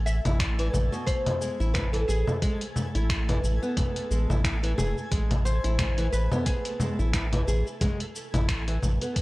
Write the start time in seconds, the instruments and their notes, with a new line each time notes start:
Already playing: sub bass A1, synth texture A3 G#5
0.06 oud E5, shaker
0.25 sub bass A1, nylon-string guitar E4, closed hi-hat, low conga, shaker
0.40 oud D5, finger snap, kick, closed hi-hat, shaker
0.59 nylon-string guitar E3, closed hi-hat, shaker
0.74 sub bass A1, low conga, shaker
0.92 nylon-string guitar B2, shaker
1.06 oud C5, kick, closed hi-hat, shaker
1.26 closed hi-hat, low conga, shaker
1.41 nylon-string guitar G#3, shaker
1.60 sub bass A1, nylon-string guitar E4, shaker
1.74 nylon-string guitar E4, oud B4, finger snap, kick, closed hi-hat, low conga, shaker
1.93 nylon-string guitar E3, oud A4, closed hi-hat, shaker
2.08 sub bass A1, oud G#4, nylon-string guitar G#4, shaker
2.27 low conga, shaker
2.42 nylon-string guitar G#3, kick, closed hi-hat, shaker
2.61 closed hi-hat, shaker
2.76 low conga, shaker
2.95 sub bass A1, nylon-string guitar E4, closed hi-hat, shaker
3.10 finger snap, kick, closed hi-hat, shaker
3.29 nylon-string guitar E3, closed hi-hat, low conga, shaker
3.43 sub bass A1, shaker
3.62 nylon-string guitar B3, shaker
3.77 kick, closed hi-hat, low conga, shaker
3.96 closed hi-hat, shaker
4.11 sub bass A1, nylon-string guitar G#3, shaker
4.30 sub bass A1, nylon-string guitar E4, low conga, shaker
4.44 nylon-string guitar E4, finger snap, kick, closed hi-hat, shaker
4.63 nylon-string guitar E3, closed hi-hat, shaker
4.78 sub bass E1, nylon-string guitar G#4, low conga, shaker
4.98 shaker
5.11 sub bass A1, nylon-string guitar G#3, kick, closed hi-hat, shaker
5.31 closed hi-hat, low conga, shaker
5.45 oud C5, shaker
5.64 sub bass A1, nylon-string guitar E4, closed hi-hat, shaker
5.79 finger snap, kick, closed hi-hat, low conga, shaker
5.98 nylon-string guitar E3, closed hi-hat, shaker
6.12 sub bass A1, oud B4, shaker
6.32 nylon-string guitar B3, low conga, shaker
6.46 oud G#4, kick, closed hi-hat, shaker
6.65 closed hi-hat, shaker
6.80 nylon-string guitar G#3, low conga, shaker
6.99 sub bass A1, nylon-string guitar E4, shaker
7.14 nylon-string guitar E4, finger snap, kick, closed hi-hat, shaker
7.33 nylon-string guitar E3, closed hi-hat, low conga, shaker
7.47 sub bass A1, nylon-string guitar G#4, shaker
7.67 shaker
7.81 nylon-string guitar G#3, kick, closed hi-hat, low conga, shaker
8.00 closed hi-hat, shaker
8.16 shaker
8.34 sub bass A1, nylon-string guitar E4, closed hi-hat, low conga, shaker
8.49 finger snap, kick, closed hi-hat, shaker
8.68 nylon-string guitar E3, closed hi-hat, shaker
8.82 sub bass A1, low conga, shaker
9.01 nylon-string guitar B3, closed hi-hat, shaker
9.16 kick, closed hi-hat, shaker